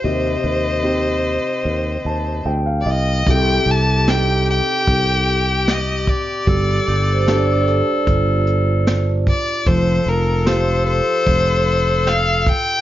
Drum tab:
HH |--------|xxxxxxxx|xxxxxxxx|xxxxxxxx|
SD |--------|--o---o-|--o---o-|--o---o-|
BD |--------|o---o--o|o---o--o|o---o--o|